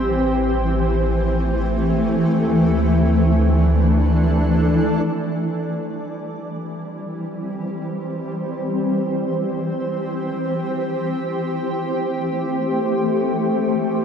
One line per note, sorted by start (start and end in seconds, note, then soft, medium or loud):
0.00 2.23 A1 medium
0.00 14.05 E3 medium
0.00 3.38 C4 medium
0.00 3.38 G4 medium
0.00 3.38 C5 medium
0.20 5.07 A3 medium
2.28 5.01 D2 medium
2.52 6.30 D4 medium
2.85 6.55 A4 medium
3.53 7.27 D5 medium
5.29 10.54 G3 medium
5.57 14.05 G4 medium
5.80 14.05 C4 medium
5.96 14.05 C5 medium
11.01 14.05 A3 medium